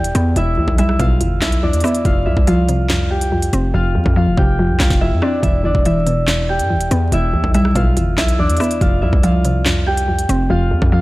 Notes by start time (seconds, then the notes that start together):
Already playing: E2 B2 E3 D4 E4 G4 D5 E5 G5, impact
0.00 E1
0.04 closed hi-hat
0.15 E2 B3, closed hi-hat
0.36 E1 E2 E4 E5, closed hi-hat
0.57 E2
0.68 B1, kick
0.78 G3 E4 E5, closed hi-hat
0.89 cross-stick
0.99 B1 B2 F4 F5, kick, closed hi-hat
1.21 G1 E2, closed hi-hat
1.42 B1 E4 E5, kick, snare, clap
1.52 closed hi-hat
1.63 E2 D4 D5
1.73 E2, closed hi-hat
1.80 B3 E5, cross-stick, closed hi-hat, open hi-hat
1.85 E4, closed hi-hat
1.95 closed hi-hat
2.05 F1 F2 F4 F5, kick, closed hi-hat
2.26 C2 F2 E4 E5
2.37 C2, kick
2.47 F3 F4 F5, closed hi-hat
2.69 C3, closed hi-hat
2.89 F2, snare, clap
3.10 G4 G5
3.21 closed hi-hat
3.32 F2
3.42 closed hi-hat
3.53 F1 C4, closed hi-hat
3.74 F1 F2 F4 F5
3.95 F2
4.06 F2, kick
4.16 F3 F4 F5
4.27 E1
4.37 F1 C3 G4 G5, kick
4.59 F2
4.69 C2
4.80 C2 F4 F5, kick, snare, clap
4.90 F1, kick, snare
5.01 F2 E4 E5
5.12 F2
5.22 C4 D4 D5, cross-stick
5.43 E1 E2 E4 E5, kick, closed hi-hat
5.64 G1 E2 D4 D5
5.75 E1, kick
5.85 E3 E4 E5, closed hi-hat
6.07 B2, closed hi-hat
6.27 E2, snare, clap
6.49 G4 G5
6.59 G2, closed hi-hat
6.70 E2
6.75 E1
6.81 closed hi-hat
6.91 E2 B3, closed hi-hat
7.12 E1 E2 E4 E5, closed hi-hat
7.33 E2
7.44 B1, kick
7.54 G3 E4 E5, closed hi-hat
7.65 cross-stick
7.75 B1 B2 F4 F5, kick, closed hi-hat
7.97 G1 E2, closed hi-hat
8.18 B1 E4 E5, kick, snare, clap
8.28 closed hi-hat
8.39 E2 D4 D5
8.49 E2, closed hi-hat
8.57 B3 E5, cross-stick, closed hi-hat, open hi-hat
8.61 E4, closed hi-hat
8.71 closed hi-hat
8.81 F1 F2 F4 F5, kick, closed hi-hat
9.02 C2 F2 E4 E5
9.13 C2, kick
9.23 F3 F4 F5, closed hi-hat
9.45 C3, closed hi-hat
9.66 F2, snare, clap
9.87 G4 G5
9.97 closed hi-hat
10.08 F2
10.19 closed hi-hat
10.29 F1 C4, closed hi-hat
10.50 F1 F2 F4 F5
10.71 F2
10.82 F2, kick
10.92 F3 F4 F5